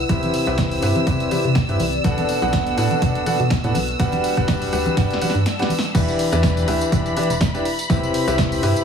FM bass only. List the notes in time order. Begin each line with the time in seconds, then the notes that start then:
0.09 C2
0.47 C2
0.82 G2
1.07 C3
1.45 C3
1.69 G2
1.80 C2
2.04 B1
2.42 B1
2.77 A2
3.02 B2
3.40 B2
3.64 A2
3.75 B1
4.00 G1
4.37 G1
4.73 D2
4.97 G2
5.35 G2
5.95 E2
6.32 E2
6.68 D2
6.92 E1
7.30 E1
7.41 E1
7.90 C2
8.28 C2
8.63 G2